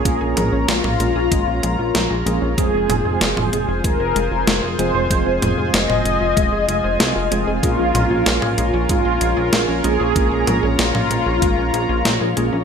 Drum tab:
HH |x-x-x-x-x-x-x-x-|x-x-x-x-x-x-x-x-|x-x-x-x-x-x-x-x-|x-x-x-x-x-x-x-x-|
SD |----o-------o---|----o-------o---|----o-------o---|----o-------o---|
T2 |--o--o----------|--o--o----------|--o--o----------|--o--o----------|
BD |o-------o-------|o-------o-------|o-------o-------|o-------o-------|

HH |x-x-x-x-x-x-x-x-|
SD |----o-------o---|
T2 |--o--o----------|
BD |o-------o-------|